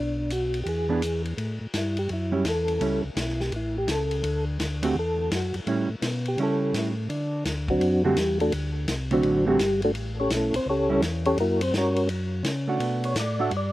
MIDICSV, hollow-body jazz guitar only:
0, 0, Header, 1, 2, 480
1, 0, Start_track
1, 0, Tempo, 357143
1, 1855, Time_signature, 4, 2, 24, 8
1, 18444, End_track
2, 0, Start_track
2, 0, Title_t, "Hollow-body jazz guitar"
2, 0, Program_c, 0, 26
2, 1193, Note_on_c, 0, 52, 60
2, 1203, Note_on_c, 0, 59, 65
2, 1207, Note_on_c, 0, 62, 63
2, 1210, Note_on_c, 0, 68, 61
2, 1352, Note_off_c, 0, 52, 0
2, 1356, Note_off_c, 0, 59, 0
2, 1358, Note_off_c, 0, 62, 0
2, 1360, Note_off_c, 0, 68, 0
2, 3113, Note_on_c, 0, 55, 52
2, 3121, Note_on_c, 0, 61, 67
2, 3132, Note_on_c, 0, 64, 61
2, 3273, Note_off_c, 0, 55, 0
2, 3277, Note_off_c, 0, 61, 0
2, 3282, Note_off_c, 0, 64, 0
2, 3776, Note_on_c, 0, 55, 54
2, 3785, Note_on_c, 0, 61, 63
2, 3785, Note_on_c, 0, 64, 60
2, 4056, Note_off_c, 0, 55, 0
2, 4061, Note_off_c, 0, 61, 0
2, 4061, Note_off_c, 0, 64, 0
2, 6485, Note_on_c, 0, 50, 59
2, 6487, Note_on_c, 0, 57, 65
2, 6492, Note_on_c, 0, 60, 67
2, 6502, Note_on_c, 0, 66, 74
2, 6640, Note_off_c, 0, 50, 0
2, 6642, Note_off_c, 0, 57, 0
2, 6644, Note_off_c, 0, 60, 0
2, 6649, Note_off_c, 0, 66, 0
2, 7621, Note_on_c, 0, 55, 57
2, 7630, Note_on_c, 0, 61, 58
2, 7640, Note_on_c, 0, 64, 67
2, 7900, Note_off_c, 0, 55, 0
2, 7905, Note_off_c, 0, 61, 0
2, 7909, Note_off_c, 0, 64, 0
2, 8592, Note_on_c, 0, 55, 54
2, 8602, Note_on_c, 0, 61, 57
2, 8609, Note_on_c, 0, 64, 55
2, 9314, Note_off_c, 0, 55, 0
2, 9319, Note_off_c, 0, 61, 0
2, 9323, Note_off_c, 0, 64, 0
2, 10810, Note_on_c, 0, 50, 66
2, 10816, Note_on_c, 0, 60, 74
2, 10817, Note_on_c, 0, 57, 66
2, 10820, Note_on_c, 0, 66, 72
2, 10962, Note_off_c, 0, 50, 0
2, 10965, Note_off_c, 0, 60, 0
2, 10966, Note_off_c, 0, 57, 0
2, 10967, Note_off_c, 0, 66, 0
2, 12245, Note_on_c, 0, 50, 65
2, 12245, Note_on_c, 0, 57, 69
2, 12253, Note_on_c, 0, 60, 67
2, 12264, Note_on_c, 0, 66, 69
2, 12695, Note_off_c, 0, 50, 0
2, 12695, Note_off_c, 0, 57, 0
2, 12699, Note_off_c, 0, 60, 0
2, 12704, Note_off_c, 0, 66, 0
2, 12718, Note_on_c, 0, 50, 67
2, 12723, Note_on_c, 0, 57, 74
2, 12734, Note_on_c, 0, 60, 82
2, 12735, Note_on_c, 0, 66, 74
2, 12875, Note_off_c, 0, 50, 0
2, 12877, Note_off_c, 0, 57, 0
2, 12883, Note_off_c, 0, 60, 0
2, 12884, Note_off_c, 0, 66, 0
2, 14641, Note_on_c, 0, 55, 66
2, 14653, Note_on_c, 0, 61, 77
2, 14653, Note_on_c, 0, 64, 80
2, 14795, Note_off_c, 0, 55, 0
2, 14801, Note_off_c, 0, 61, 0
2, 14801, Note_off_c, 0, 64, 0
2, 17035, Note_on_c, 0, 57, 49
2, 17048, Note_on_c, 0, 62, 66
2, 17056, Note_on_c, 0, 66, 67
2, 17653, Note_off_c, 0, 57, 0
2, 17660, Note_off_c, 0, 62, 0
2, 17664, Note_off_c, 0, 66, 0
2, 18000, Note_on_c, 0, 57, 69
2, 18008, Note_on_c, 0, 62, 76
2, 18013, Note_on_c, 0, 66, 74
2, 18153, Note_off_c, 0, 57, 0
2, 18156, Note_off_c, 0, 62, 0
2, 18159, Note_off_c, 0, 66, 0
2, 18444, End_track
0, 0, End_of_file